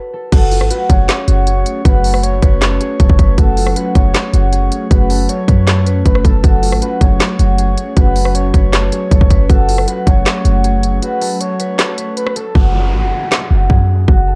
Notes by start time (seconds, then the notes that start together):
Already playing: F#4 A4 B4 C#5
0.13 A4
0.32 F#1 F#3 A3 C#4 F#4 A4, kick, closed hi-hat, crash
0.51 F4, open hi-hat
0.61 G#1, cross-stick
0.71 F#4 B4, closed hi-hat
0.90 F#1 G#4 C#5, kick, closed hi-hat
1.09 snare, clap, closed hi-hat
1.28 F#1 F#4, closed hi-hat
1.47 G#4, closed hi-hat
1.66 closed hi-hat
1.85 F#1 F#4 B4, kick, closed hi-hat
2.04 A4, open hi-hat
2.14 cross-stick
2.23 C#5, closed hi-hat
2.42 F#1 B4 C#5, kick, closed hi-hat
2.62 A4, snare, clap, closed hi-hat
2.81 G#4, closed hi-hat
3.00 F#1 A4, kick, closed hi-hat
3.09 F#1, kick
3.19 F#1 B4, kick, closed hi-hat
3.38 F#1 C#4 F#4 A4, kick, closed hi-hat
3.57 F4, open hi-hat
3.67 cross-stick
3.76 F#4 B4, closed hi-hat
3.95 F#1 G#4 C#5, kick, closed hi-hat
4.14 snare, clap, closed hi-hat
4.34 F#1 F#4, closed hi-hat
4.53 G#4, closed hi-hat
4.72 closed hi-hat
4.91 F#1 F#4 B4, kick, closed hi-hat
5.10 A4, open hi-hat
5.29 C#5, closed hi-hat
5.48 F#2 B4 C#5, kick, closed hi-hat
5.67 A4, snare, clap, closed hi-hat
5.86 B4, closed hi-hat
6.06 F#1 B4, kick, closed hi-hat
6.15 cross-stick
6.25 F#1 A4, kick, closed hi-hat
6.44 F#1 F#4 A4, kick, closed hi-hat
6.62 F4, open hi-hat
6.72 G#1, cross-stick
6.82 F#4 B4, closed hi-hat
7.01 F#1 G#4 C#5, kick, closed hi-hat
7.20 snare, clap, closed hi-hat
7.39 F#1 F#4, closed hi-hat
7.58 G#4, closed hi-hat
7.78 closed hi-hat
7.97 F#1 F#4 B4, kick, closed hi-hat
8.16 A4, open hi-hat
8.25 cross-stick
8.34 C#5, closed hi-hat
8.54 F#1 B4 C#5, kick, closed hi-hat
8.73 A4, snare, clap, closed hi-hat
8.92 G#4, closed hi-hat
9.11 F#1 A4, kick, closed hi-hat
9.21 F#1, kick
9.30 F#1 B4, kick, closed hi-hat
9.49 F#1 F#3 A3 F#4 A4, kick, closed hi-hat
9.68 F4, open hi-hat
9.78 cross-stick
9.88 F#4 B4, closed hi-hat
10.07 F#1 G#4 C#5, kick, closed hi-hat
10.26 snare, clap, closed hi-hat
10.45 F#1 F#4, closed hi-hat
10.64 G#4, closed hi-hat
10.83 closed hi-hat
11.02 F#4 B4, closed hi-hat
11.21 A4, open hi-hat
11.41 C#5, closed hi-hat
11.60 B4 C#5, closed hi-hat
11.79 A4, snare, clap, closed hi-hat
11.98 B4, closed hi-hat
12.17 B4, closed hi-hat
12.27 cross-stick
12.36 A4, closed hi-hat
12.55 F#1 F#4, kick, downlifter
12.74 F4
12.93 G#1 F#4
13.03 F#1
13.13 G#4
13.32 snare, clap
13.50 F#1 F#4
13.70 F#2 G#4, kick
14.08 F#1 F#4, kick
14.27 A4